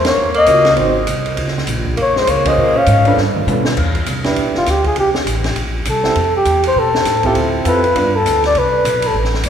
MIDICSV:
0, 0, Header, 1, 6, 480
1, 0, Start_track
1, 0, Tempo, 299252
1, 268, Time_signature, 4, 2, 24, 8
1, 15222, End_track
2, 0, Start_track
2, 0, Title_t, "Flugelhorn"
2, 0, Program_c, 0, 56
2, 111, Note_on_c, 0, 73, 77
2, 544, Note_off_c, 0, 73, 0
2, 600, Note_on_c, 0, 75, 103
2, 1206, Note_off_c, 0, 75, 0
2, 3239, Note_on_c, 0, 73, 83
2, 3499, Note_on_c, 0, 72, 95
2, 3523, Note_off_c, 0, 73, 0
2, 3699, Note_on_c, 0, 73, 82
2, 3723, Note_off_c, 0, 72, 0
2, 3977, Note_on_c, 0, 75, 78
2, 4001, Note_off_c, 0, 73, 0
2, 4458, Note_on_c, 0, 77, 94
2, 4482, Note_off_c, 0, 75, 0
2, 5106, Note_off_c, 0, 77, 0
2, 7345, Note_on_c, 0, 65, 81
2, 7547, Note_on_c, 0, 67, 71
2, 7571, Note_off_c, 0, 65, 0
2, 7796, Note_off_c, 0, 67, 0
2, 7806, Note_on_c, 0, 68, 83
2, 7968, Note_off_c, 0, 68, 0
2, 8010, Note_on_c, 0, 67, 77
2, 8171, Note_off_c, 0, 67, 0
2, 9458, Note_on_c, 0, 69, 73
2, 10149, Note_off_c, 0, 69, 0
2, 10214, Note_on_c, 0, 67, 83
2, 10641, Note_off_c, 0, 67, 0
2, 10705, Note_on_c, 0, 72, 90
2, 10891, Note_on_c, 0, 69, 85
2, 10915, Note_off_c, 0, 72, 0
2, 11654, Note_on_c, 0, 67, 72
2, 11678, Note_off_c, 0, 69, 0
2, 11821, Note_off_c, 0, 67, 0
2, 12318, Note_on_c, 0, 71, 90
2, 13085, Note_on_c, 0, 69, 87
2, 13109, Note_off_c, 0, 71, 0
2, 13544, Note_off_c, 0, 69, 0
2, 13572, Note_on_c, 0, 74, 94
2, 13769, Note_on_c, 0, 71, 86
2, 13793, Note_off_c, 0, 74, 0
2, 14550, Note_on_c, 0, 69, 75
2, 14574, Note_off_c, 0, 71, 0
2, 14704, Note_off_c, 0, 69, 0
2, 15222, End_track
3, 0, Start_track
3, 0, Title_t, "Upright piano"
3, 0, Program_c, 1, 0
3, 744, Note_on_c, 1, 61, 61
3, 759, Note_on_c, 1, 65, 59
3, 766, Note_on_c, 1, 66, 57
3, 775, Note_on_c, 1, 70, 73
3, 1009, Note_off_c, 1, 61, 0
3, 1017, Note_off_c, 1, 65, 0
3, 1021, Note_off_c, 1, 66, 0
3, 1025, Note_off_c, 1, 70, 0
3, 1219, Note_on_c, 1, 60, 65
3, 1233, Note_on_c, 1, 63, 60
3, 1245, Note_on_c, 1, 66, 60
3, 1257, Note_on_c, 1, 72, 65
3, 1488, Note_off_c, 1, 60, 0
3, 1495, Note_off_c, 1, 63, 0
3, 1501, Note_off_c, 1, 66, 0
3, 1507, Note_off_c, 1, 72, 0
3, 3927, Note_on_c, 1, 61, 67
3, 3940, Note_on_c, 1, 65, 61
3, 3948, Note_on_c, 1, 68, 65
3, 3966, Note_on_c, 1, 72, 77
3, 4561, Note_off_c, 1, 61, 0
3, 4568, Note_off_c, 1, 65, 0
3, 4572, Note_off_c, 1, 68, 0
3, 4581, Note_off_c, 1, 72, 0
3, 4892, Note_on_c, 1, 62, 79
3, 4909, Note_on_c, 1, 65, 66
3, 4918, Note_on_c, 1, 69, 68
3, 4930, Note_on_c, 1, 71, 85
3, 5063, Note_off_c, 1, 62, 0
3, 5071, Note_off_c, 1, 65, 0
3, 5076, Note_off_c, 1, 69, 0
3, 5082, Note_off_c, 1, 71, 0
3, 5557, Note_on_c, 1, 62, 51
3, 5567, Note_on_c, 1, 65, 47
3, 5587, Note_on_c, 1, 69, 48
3, 5599, Note_on_c, 1, 71, 60
3, 6041, Note_off_c, 1, 62, 0
3, 6046, Note_off_c, 1, 65, 0
3, 6056, Note_off_c, 1, 69, 0
3, 6062, Note_off_c, 1, 71, 0
3, 6805, Note_on_c, 1, 62, 69
3, 6811, Note_on_c, 1, 64, 63
3, 6819, Note_on_c, 1, 67, 58
3, 6832, Note_on_c, 1, 71, 75
3, 7442, Note_off_c, 1, 62, 0
3, 7445, Note_off_c, 1, 64, 0
3, 7449, Note_off_c, 1, 67, 0
3, 7455, Note_off_c, 1, 71, 0
3, 9679, Note_on_c, 1, 60, 63
3, 9692, Note_on_c, 1, 64, 60
3, 9700, Note_on_c, 1, 67, 57
3, 9702, Note_on_c, 1, 69, 71
3, 9856, Note_off_c, 1, 60, 0
3, 9863, Note_off_c, 1, 64, 0
3, 9867, Note_off_c, 1, 67, 0
3, 9868, Note_off_c, 1, 69, 0
3, 11617, Note_on_c, 1, 60, 73
3, 11624, Note_on_c, 1, 64, 71
3, 11632, Note_on_c, 1, 65, 69
3, 11648, Note_on_c, 1, 69, 83
3, 12239, Note_off_c, 1, 60, 0
3, 12247, Note_off_c, 1, 64, 0
3, 12250, Note_off_c, 1, 65, 0
3, 12259, Note_off_c, 1, 69, 0
3, 12263, Note_on_c, 1, 60, 61
3, 12280, Note_on_c, 1, 64, 61
3, 12282, Note_on_c, 1, 65, 58
3, 12295, Note_on_c, 1, 69, 77
3, 12531, Note_off_c, 1, 60, 0
3, 12540, Note_off_c, 1, 64, 0
3, 12541, Note_off_c, 1, 65, 0
3, 12547, Note_off_c, 1, 69, 0
3, 12747, Note_on_c, 1, 59, 62
3, 12761, Note_on_c, 1, 62, 59
3, 12775, Note_on_c, 1, 65, 56
3, 12786, Note_on_c, 1, 71, 69
3, 13012, Note_off_c, 1, 59, 0
3, 13020, Note_off_c, 1, 62, 0
3, 13026, Note_off_c, 1, 65, 0
3, 13032, Note_off_c, 1, 71, 0
3, 15222, End_track
4, 0, Start_track
4, 0, Title_t, "Tenor saxophone"
4, 0, Program_c, 2, 66
4, 113, Note_on_c, 2, 58, 68
4, 545, Note_off_c, 2, 58, 0
4, 562, Note_on_c, 2, 58, 91
4, 1185, Note_off_c, 2, 58, 0
4, 3159, Note_on_c, 2, 58, 68
4, 3472, Note_on_c, 2, 56, 80
4, 3497, Note_off_c, 2, 58, 0
4, 3664, Note_on_c, 2, 58, 70
4, 3688, Note_off_c, 2, 56, 0
4, 3936, Note_off_c, 2, 58, 0
4, 3936, Note_on_c, 2, 58, 74
4, 4431, Note_on_c, 2, 61, 81
4, 4455, Note_off_c, 2, 58, 0
4, 5092, Note_off_c, 2, 61, 0
4, 15222, End_track
5, 0, Start_track
5, 0, Title_t, "Upright bass"
5, 0, Program_c, 3, 32
5, 0, Note_on_c, 3, 40, 83
5, 253, Note_off_c, 3, 40, 0
5, 267, Note_on_c, 3, 39, 80
5, 734, Note_off_c, 3, 39, 0
5, 749, Note_on_c, 3, 37, 99
5, 1216, Note_off_c, 3, 37, 0
5, 1232, Note_on_c, 3, 32, 86
5, 1699, Note_off_c, 3, 32, 0
5, 1715, Note_on_c, 3, 36, 90
5, 2181, Note_off_c, 3, 36, 0
5, 2195, Note_on_c, 3, 37, 87
5, 2662, Note_off_c, 3, 37, 0
5, 2678, Note_on_c, 3, 34, 102
5, 3144, Note_off_c, 3, 34, 0
5, 3164, Note_on_c, 3, 41, 74
5, 3628, Note_off_c, 3, 41, 0
5, 3645, Note_on_c, 3, 37, 88
5, 4109, Note_off_c, 3, 37, 0
5, 4131, Note_on_c, 3, 46, 86
5, 4592, Note_off_c, 3, 46, 0
5, 4601, Note_on_c, 3, 44, 104
5, 5068, Note_off_c, 3, 44, 0
5, 5086, Note_on_c, 3, 43, 85
5, 5551, Note_off_c, 3, 43, 0
5, 5564, Note_on_c, 3, 47, 87
5, 6030, Note_off_c, 3, 47, 0
5, 6049, Note_on_c, 3, 40, 77
5, 6513, Note_off_c, 3, 40, 0
5, 6522, Note_on_c, 3, 36, 92
5, 6989, Note_off_c, 3, 36, 0
5, 7003, Note_on_c, 3, 35, 73
5, 7169, Note_on_c, 3, 31, 51
5, 7193, Note_off_c, 3, 35, 0
5, 7311, Note_off_c, 3, 31, 0
5, 7321, Note_on_c, 3, 28, 64
5, 7472, Note_off_c, 3, 28, 0
5, 7483, Note_on_c, 3, 38, 80
5, 7950, Note_off_c, 3, 38, 0
5, 7956, Note_on_c, 3, 36, 75
5, 8426, Note_off_c, 3, 36, 0
5, 8438, Note_on_c, 3, 33, 92
5, 8907, Note_off_c, 3, 33, 0
5, 8916, Note_on_c, 3, 34, 76
5, 9385, Note_off_c, 3, 34, 0
5, 9401, Note_on_c, 3, 36, 84
5, 9863, Note_off_c, 3, 36, 0
5, 9873, Note_on_c, 3, 41, 80
5, 10343, Note_off_c, 3, 41, 0
5, 10354, Note_on_c, 3, 40, 94
5, 10822, Note_off_c, 3, 40, 0
5, 10840, Note_on_c, 3, 47, 78
5, 11305, Note_off_c, 3, 47, 0
5, 11317, Note_on_c, 3, 45, 82
5, 11783, Note_off_c, 3, 45, 0
5, 11793, Note_on_c, 3, 38, 81
5, 12260, Note_off_c, 3, 38, 0
5, 12273, Note_on_c, 3, 41, 97
5, 12739, Note_off_c, 3, 41, 0
5, 12759, Note_on_c, 3, 43, 79
5, 13221, Note_off_c, 3, 43, 0
5, 13235, Note_on_c, 3, 38, 84
5, 13699, Note_off_c, 3, 38, 0
5, 13717, Note_on_c, 3, 36, 84
5, 14179, Note_off_c, 3, 36, 0
5, 14190, Note_on_c, 3, 35, 96
5, 14655, Note_off_c, 3, 35, 0
5, 14666, Note_on_c, 3, 33, 85
5, 15132, Note_off_c, 3, 33, 0
5, 15142, Note_on_c, 3, 31, 84
5, 15222, Note_off_c, 3, 31, 0
5, 15222, End_track
6, 0, Start_track
6, 0, Title_t, "Drums"
6, 73, Note_on_c, 9, 51, 59
6, 78, Note_on_c, 9, 38, 72
6, 234, Note_off_c, 9, 51, 0
6, 238, Note_off_c, 9, 38, 0
6, 550, Note_on_c, 9, 51, 44
6, 710, Note_off_c, 9, 51, 0
6, 744, Note_on_c, 9, 44, 53
6, 744, Note_on_c, 9, 51, 67
6, 751, Note_on_c, 9, 36, 19
6, 904, Note_off_c, 9, 44, 0
6, 904, Note_off_c, 9, 51, 0
6, 912, Note_off_c, 9, 36, 0
6, 1038, Note_on_c, 9, 51, 47
6, 1043, Note_on_c, 9, 38, 56
6, 1198, Note_off_c, 9, 51, 0
6, 1203, Note_off_c, 9, 38, 0
6, 1228, Note_on_c, 9, 51, 60
6, 1234, Note_on_c, 9, 36, 18
6, 1388, Note_off_c, 9, 51, 0
6, 1394, Note_off_c, 9, 36, 0
6, 1713, Note_on_c, 9, 44, 57
6, 1713, Note_on_c, 9, 51, 67
6, 1718, Note_on_c, 9, 36, 21
6, 1873, Note_off_c, 9, 44, 0
6, 1873, Note_off_c, 9, 51, 0
6, 1878, Note_off_c, 9, 36, 0
6, 2014, Note_on_c, 9, 51, 47
6, 2174, Note_off_c, 9, 51, 0
6, 2197, Note_on_c, 9, 51, 60
6, 2200, Note_on_c, 9, 36, 22
6, 2358, Note_off_c, 9, 51, 0
6, 2360, Note_off_c, 9, 36, 0
6, 2368, Note_on_c, 9, 38, 29
6, 2528, Note_off_c, 9, 38, 0
6, 2530, Note_on_c, 9, 38, 42
6, 2675, Note_on_c, 9, 44, 61
6, 2675, Note_on_c, 9, 51, 61
6, 2682, Note_on_c, 9, 36, 23
6, 2691, Note_off_c, 9, 38, 0
6, 2836, Note_off_c, 9, 44, 0
6, 2836, Note_off_c, 9, 51, 0
6, 2842, Note_off_c, 9, 36, 0
6, 2973, Note_on_c, 9, 36, 57
6, 3134, Note_off_c, 9, 36, 0
6, 3162, Note_on_c, 9, 36, 19
6, 3162, Note_on_c, 9, 51, 56
6, 3323, Note_off_c, 9, 36, 0
6, 3323, Note_off_c, 9, 51, 0
6, 3466, Note_on_c, 9, 38, 44
6, 3626, Note_off_c, 9, 38, 0
6, 3643, Note_on_c, 9, 44, 58
6, 3643, Note_on_c, 9, 51, 67
6, 3646, Note_on_c, 9, 36, 23
6, 3803, Note_off_c, 9, 44, 0
6, 3803, Note_off_c, 9, 51, 0
6, 3806, Note_off_c, 9, 36, 0
6, 3936, Note_on_c, 9, 51, 71
6, 3938, Note_on_c, 9, 36, 81
6, 4097, Note_off_c, 9, 51, 0
6, 4098, Note_off_c, 9, 36, 0
6, 4593, Note_on_c, 9, 44, 54
6, 4593, Note_on_c, 9, 51, 64
6, 4605, Note_on_c, 9, 36, 26
6, 4754, Note_off_c, 9, 44, 0
6, 4754, Note_off_c, 9, 51, 0
6, 4766, Note_off_c, 9, 36, 0
6, 4893, Note_on_c, 9, 51, 46
6, 5054, Note_off_c, 9, 51, 0
6, 5089, Note_on_c, 9, 38, 44
6, 5250, Note_off_c, 9, 38, 0
6, 5390, Note_on_c, 9, 47, 58
6, 5551, Note_off_c, 9, 47, 0
6, 5571, Note_on_c, 9, 44, 47
6, 5575, Note_on_c, 9, 48, 66
6, 5731, Note_off_c, 9, 44, 0
6, 5736, Note_off_c, 9, 48, 0
6, 5851, Note_on_c, 9, 38, 67
6, 6012, Note_off_c, 9, 38, 0
6, 6044, Note_on_c, 9, 49, 70
6, 6047, Note_on_c, 9, 36, 61
6, 6204, Note_off_c, 9, 49, 0
6, 6208, Note_off_c, 9, 36, 0
6, 6331, Note_on_c, 9, 51, 41
6, 6336, Note_on_c, 9, 36, 52
6, 6492, Note_off_c, 9, 51, 0
6, 6497, Note_off_c, 9, 36, 0
6, 6517, Note_on_c, 9, 44, 45
6, 6517, Note_on_c, 9, 51, 67
6, 6522, Note_on_c, 9, 36, 18
6, 6677, Note_off_c, 9, 44, 0
6, 6677, Note_off_c, 9, 51, 0
6, 6682, Note_off_c, 9, 36, 0
6, 6806, Note_on_c, 9, 51, 41
6, 6810, Note_on_c, 9, 38, 47
6, 6966, Note_off_c, 9, 51, 0
6, 6971, Note_off_c, 9, 38, 0
6, 6996, Note_on_c, 9, 51, 56
6, 7002, Note_on_c, 9, 36, 17
6, 7157, Note_off_c, 9, 51, 0
6, 7163, Note_off_c, 9, 36, 0
6, 7291, Note_on_c, 9, 38, 33
6, 7452, Note_off_c, 9, 38, 0
6, 7479, Note_on_c, 9, 44, 56
6, 7479, Note_on_c, 9, 51, 61
6, 7482, Note_on_c, 9, 36, 19
6, 7484, Note_on_c, 9, 38, 33
6, 7640, Note_off_c, 9, 44, 0
6, 7640, Note_off_c, 9, 51, 0
6, 7643, Note_off_c, 9, 36, 0
6, 7644, Note_off_c, 9, 38, 0
6, 7767, Note_on_c, 9, 51, 40
6, 7771, Note_on_c, 9, 36, 50
6, 7928, Note_off_c, 9, 51, 0
6, 7932, Note_off_c, 9, 36, 0
6, 7951, Note_on_c, 9, 51, 53
6, 7960, Note_on_c, 9, 36, 23
6, 8112, Note_off_c, 9, 51, 0
6, 8120, Note_off_c, 9, 36, 0
6, 8254, Note_on_c, 9, 38, 56
6, 8414, Note_off_c, 9, 38, 0
6, 8443, Note_on_c, 9, 36, 23
6, 8448, Note_on_c, 9, 44, 58
6, 8448, Note_on_c, 9, 51, 67
6, 8603, Note_off_c, 9, 36, 0
6, 8608, Note_off_c, 9, 44, 0
6, 8608, Note_off_c, 9, 51, 0
6, 8726, Note_on_c, 9, 51, 44
6, 8731, Note_on_c, 9, 38, 49
6, 8887, Note_off_c, 9, 51, 0
6, 8892, Note_off_c, 9, 38, 0
6, 8915, Note_on_c, 9, 51, 57
6, 8920, Note_on_c, 9, 36, 23
6, 9076, Note_off_c, 9, 51, 0
6, 9080, Note_off_c, 9, 36, 0
6, 9388, Note_on_c, 9, 44, 60
6, 9388, Note_on_c, 9, 51, 66
6, 9396, Note_on_c, 9, 36, 22
6, 9549, Note_off_c, 9, 44, 0
6, 9549, Note_off_c, 9, 51, 0
6, 9557, Note_off_c, 9, 36, 0
6, 9683, Note_on_c, 9, 38, 45
6, 9843, Note_off_c, 9, 38, 0
6, 9873, Note_on_c, 9, 51, 59
6, 9876, Note_on_c, 9, 36, 20
6, 10033, Note_off_c, 9, 51, 0
6, 10036, Note_off_c, 9, 36, 0
6, 10350, Note_on_c, 9, 44, 52
6, 10350, Note_on_c, 9, 51, 64
6, 10355, Note_on_c, 9, 36, 23
6, 10511, Note_off_c, 9, 44, 0
6, 10511, Note_off_c, 9, 51, 0
6, 10515, Note_off_c, 9, 36, 0
6, 10642, Note_on_c, 9, 51, 65
6, 10802, Note_off_c, 9, 51, 0
6, 10840, Note_on_c, 9, 36, 21
6, 11000, Note_off_c, 9, 36, 0
6, 11141, Note_on_c, 9, 38, 56
6, 11301, Note_off_c, 9, 38, 0
6, 11311, Note_on_c, 9, 44, 54
6, 11311, Note_on_c, 9, 51, 60
6, 11316, Note_on_c, 9, 38, 34
6, 11317, Note_on_c, 9, 36, 17
6, 11472, Note_off_c, 9, 44, 0
6, 11472, Note_off_c, 9, 51, 0
6, 11476, Note_off_c, 9, 38, 0
6, 11478, Note_off_c, 9, 36, 0
6, 11597, Note_on_c, 9, 51, 43
6, 11606, Note_on_c, 9, 36, 55
6, 11758, Note_off_c, 9, 51, 0
6, 11766, Note_off_c, 9, 36, 0
6, 11789, Note_on_c, 9, 51, 59
6, 11796, Note_on_c, 9, 36, 18
6, 11949, Note_off_c, 9, 51, 0
6, 11957, Note_off_c, 9, 36, 0
6, 12271, Note_on_c, 9, 44, 62
6, 12271, Note_on_c, 9, 51, 65
6, 12278, Note_on_c, 9, 36, 21
6, 12432, Note_off_c, 9, 44, 0
6, 12432, Note_off_c, 9, 51, 0
6, 12439, Note_off_c, 9, 36, 0
6, 12571, Note_on_c, 9, 51, 44
6, 12732, Note_off_c, 9, 51, 0
6, 12761, Note_on_c, 9, 36, 25
6, 12761, Note_on_c, 9, 51, 67
6, 12921, Note_off_c, 9, 36, 0
6, 12922, Note_off_c, 9, 51, 0
6, 13240, Note_on_c, 9, 36, 24
6, 13246, Note_on_c, 9, 44, 59
6, 13246, Note_on_c, 9, 51, 66
6, 13400, Note_off_c, 9, 36, 0
6, 13406, Note_off_c, 9, 44, 0
6, 13406, Note_off_c, 9, 51, 0
6, 13533, Note_on_c, 9, 51, 44
6, 13538, Note_on_c, 9, 38, 32
6, 13694, Note_off_c, 9, 51, 0
6, 13699, Note_off_c, 9, 38, 0
6, 13712, Note_on_c, 9, 51, 54
6, 13717, Note_on_c, 9, 36, 22
6, 13872, Note_off_c, 9, 51, 0
6, 13877, Note_off_c, 9, 36, 0
6, 14193, Note_on_c, 9, 36, 19
6, 14196, Note_on_c, 9, 44, 61
6, 14196, Note_on_c, 9, 51, 65
6, 14353, Note_off_c, 9, 36, 0
6, 14356, Note_off_c, 9, 44, 0
6, 14356, Note_off_c, 9, 51, 0
6, 14471, Note_on_c, 9, 51, 68
6, 14632, Note_off_c, 9, 51, 0
6, 14666, Note_on_c, 9, 36, 26
6, 14826, Note_off_c, 9, 36, 0
6, 14826, Note_on_c, 9, 38, 32
6, 14983, Note_off_c, 9, 38, 0
6, 14983, Note_on_c, 9, 38, 42
6, 15132, Note_on_c, 9, 44, 58
6, 15132, Note_on_c, 9, 51, 67
6, 15140, Note_on_c, 9, 36, 21
6, 15143, Note_off_c, 9, 38, 0
6, 15222, Note_off_c, 9, 36, 0
6, 15222, Note_off_c, 9, 44, 0
6, 15222, Note_off_c, 9, 51, 0
6, 15222, End_track
0, 0, End_of_file